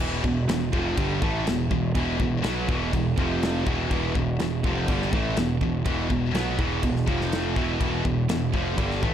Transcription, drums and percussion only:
0.00 kick loud
0.00 crash loud
0.00 crash medium
0.24 kick medium
0.49 snare loud
0.49 crash medium
0.73 kick loud
0.97 kick loud
0.97 crash medium
1.22 kick loud
1.47 snare loud
1.47 crash medium
1.71 kick medium
1.95 kick medium
1.95 crash medium
2.20 kick medium
2.44 snare loud
2.44 crash medium
2.69 kick loud
2.93 kick medium
2.93 crash medium
3.18 kick loud
3.43 snare loud
3.43 crash medium
3.67 kick loud
3.91 kick loud
3.91 crash medium
4.15 kick medium
4.39 snare loud
4.39 crash medium
4.64 kick loud
4.88 kick loud
4.88 crash medium
5.02 snare soft
5.13 kick loud
5.37 snare loud
5.37 crash medium
5.61 kick medium
5.86 kick loud
5.86 crash medium
6.10 kick medium
6.35 snare loud
6.35 crash medium
6.59 kick loud
6.83 kick loud
6.83 crash medium
6.96 snare soft
7.08 kick loud
7.21 snare soft
7.32 snare loud
7.32 crash medium
7.56 kick loud
7.81 kick medium
7.81 crash medium
8.05 kick medium
8.29 snare loud
8.29 crash medium
8.54 kick loud
8.78 kick loud
8.78 crash medium
8.91 snare soft
9.03 kick loud

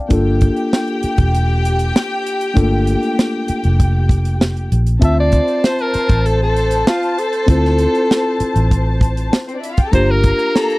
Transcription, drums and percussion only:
0.10 kick medium
0.10 closed hi-hat medium
0.41 kick medium
0.41 closed hi-hat medium
0.56 closed hi-hat soft
0.73 snare medium
0.88 closed hi-hat soft
1.03 closed hi-hat medium
1.18 kick medium
1.18 closed hi-hat soft
1.35 closed hi-hat medium
1.65 closed hi-hat medium
1.79 closed hi-hat medium
1.96 snare loud
2.27 closed hi-hat medium
2.41 closed hi-hat soft
2.57 kick loud
2.57 closed hi-hat medium
2.87 closed hi-hat medium
3.03 closed hi-hat soft
3.19 snare medium
3.48 closed hi-hat medium
3.64 closed hi-hat soft
3.80 kick medium
3.80 closed hi-hat medium
4.09 kick medium
4.09 closed hi-hat medium
4.25 closed hi-hat medium
4.41 snare medium
4.57 closed hi-hat soft
4.72 closed hi-hat medium
4.87 closed hi-hat soft
5.02 kick loud
5.02 closed hi-hat medium
5.32 kick medium
5.32 closed hi-hat medium
5.48 closed hi-hat soft
5.64 snare medium
5.79 closed hi-hat soft
5.94 closed hi-hat medium
6.09 kick medium
6.09 closed hi-hat soft
6.26 closed hi-hat medium
6.57 closed hi-hat medium
6.71 closed hi-hat medium
6.87 snare loud
7.03 closed hi-hat soft
7.18 closed hi-hat medium
7.33 closed hi-hat soft
7.48 kick loud
7.48 closed hi-hat medium
7.65 snare soft
7.79 closed hi-hat medium
7.95 closed hi-hat soft
8.11 snare medium
8.40 closed hi-hat medium
8.56 closed hi-hat soft
8.71 kick medium
8.71 closed hi-hat medium
9.01 kick medium
9.01 closed hi-hat medium
9.17 closed hi-hat soft
9.33 snare loud
9.49 closed hi-hat soft
9.64 closed hi-hat medium
9.77 kick medium
9.77 closed hi-hat soft
9.93 kick loud
9.93 closed hi-hat medium
10.24 kick medium
10.24 closed hi-hat medium
10.39 closed hi-hat soft
10.56 snare medium
10.70 closed hi-hat soft

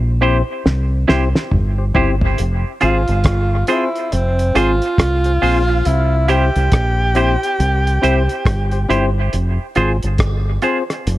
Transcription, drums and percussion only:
0.66 snare medium
1.09 snare medium
1.35 snare medium
1.51 mid tom medium
1.95 floor tom medium
2.21 floor tom medium
2.38 closed hi-hat medium
2.81 closed hi-hat medium
3.08 closed hi-hat medium
3.24 kick loud
3.24 cross-stick loud
3.24 closed hi-hat medium
3.67 closed hi-hat medium
3.95 closed hi-hat medium
4.12 closed hi-hat medium
4.39 closed hi-hat medium
4.56 cross-stick medium
4.56 closed hi-hat medium
4.82 closed hi-hat soft
4.98 kick loud
4.98 cross-stick loud
4.98 closed hi-hat loud
5.24 closed hi-hat soft
5.43 open hi-hat medium
5.85 closed hi-hat loud
6.28 closed hi-hat medium
6.56 closed hi-hat medium
6.72 kick loud
6.72 cross-stick loud
6.72 closed hi-hat medium
7.15 closed hi-hat medium
7.43 closed hi-hat medium
7.60 closed hi-hat medium
7.87 closed hi-hat medium
8.03 closed hi-hat medium
8.29 closed hi-hat soft
8.46 kick loud
8.46 cross-stick loud
8.46 closed hi-hat medium
8.71 closed hi-hat medium
8.90 closed hi-hat medium
9.33 closed hi-hat medium
9.75 closed hi-hat medium
10.03 closed hi-hat medium
10.18 kick loud
10.18 cross-stick loud
10.18 closed hi-hat medium
10.62 closed hi-hat medium
10.90 cross-stick medium
10.90 closed hi-hat medium
11.07 closed hi-hat medium

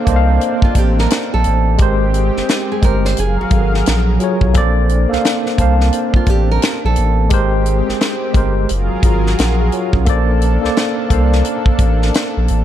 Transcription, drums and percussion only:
0.07 kick medium
0.07 closed hi-hat medium
0.41 closed hi-hat medium
0.62 kick medium
0.75 kick medium
0.75 closed hi-hat medium
0.99 snare soft
1.10 snare loud
1.10 closed hi-hat medium
1.44 closed hi-hat medium
1.78 kick loud
1.78 closed hi-hat medium
2.14 closed hi-hat medium
2.37 snare soft
2.49 snare medium
2.49 closed hi-hat medium
2.83 kick medium
2.83 closed hi-hat medium
3.05 snare soft
3.17 closed hi-hat medium
3.50 kick medium
3.50 closed hi-hat medium
3.74 snare soft
3.86 snare loud
3.86 closed hi-hat medium
4.20 closed hi-hat medium
4.41 kick medium
4.54 kick loud
4.54 closed hi-hat medium
4.89 closed hi-hat medium
5.13 snare soft
5.25 snare medium
5.25 closed hi-hat medium
5.46 snare soft
5.58 kick medium
5.58 closed hi-hat medium
5.81 snare soft
5.93 closed hi-hat medium
6.14 kick medium
6.26 kick medium
6.26 closed hi-hat medium
6.62 snare loud
6.62 closed hi-hat loud
6.96 closed hi-hat medium
7.30 kick loud
7.30 closed hi-hat medium
7.66 closed hi-hat medium
7.89 snare soft
8.01 snare medium
8.01 closed hi-hat medium
8.34 kick medium
8.34 closed hi-hat medium
8.69 closed hi-hat medium
9.03 kick medium
9.03 closed hi-hat medium
9.27 snare soft
9.38 snare loud
9.38 closed hi-hat loud
9.72 closed hi-hat medium
9.93 kick medium
10.06 kick loud
10.06 closed hi-hat medium
10.41 closed hi-hat medium
10.65 snare soft
10.77 snare loud
10.77 closed hi-hat medium
11.10 kick medium
11.10 closed hi-hat medium
11.33 snare soft
11.45 closed hi-hat medium
11.66 kick medium
11.79 kick medium
11.79 closed hi-hat medium
12.02 snare soft
12.14 snare loud
12.14 closed hi-hat medium
12.48 closed hi-hat medium

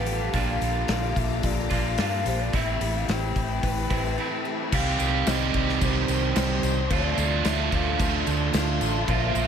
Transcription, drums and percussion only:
0.07 open hi-hat medium
0.34 kick loud
0.34 open hi-hat medium
0.62 open hi-hat soft
0.88 snare loud
0.88 open hi-hat medium
1.16 kick medium
1.16 open hi-hat medium
1.43 kick loud
1.43 open hi-hat medium
1.70 kick medium
1.70 open hi-hat medium
1.98 snare loud
1.98 open hi-hat medium
2.26 open hi-hat medium
2.53 kick loud
2.53 open hi-hat medium
2.81 open hi-hat medium
3.09 snare loud
3.09 open hi-hat medium
3.36 kick medium
3.36 open hi-hat medium
3.63 kick loud
3.63 open hi-hat medium
3.91 kick medium
3.91 open hi-hat soft
4.72 kick loud
4.72 crash loud
4.72 crash medium
4.99 tambourine medium
4.99 crash medium
5.27 snare loud
5.27 tambourine loud
5.27 crash medium
5.54 kick medium
5.54 crash medium
5.69 snare soft
5.81 kick loud
5.81 tambourine medium
5.81 crash medium
6.08 tambourine medium
6.08 crash medium
6.36 snare loud
6.36 tambourine medium
6.36 crash medium
6.63 tambourine medium
6.63 crash medium
6.90 kick loud
6.90 crash medium
7.18 tambourine medium
7.18 crash medium
7.45 snare loud
7.45 tambourine medium
7.45 crash medium
7.72 kick medium
7.72 crash medium
8.00 kick loud
8.00 tambourine medium
8.00 crash medium
8.27 tambourine medium
8.27 crash medium
8.54 snare loud
8.54 tambourine loud
8.54 crash medium
8.81 tambourine medium
8.81 crash medium
9.08 kick loud
9.08 crash medium
9.35 tambourine medium
9.35 crash medium

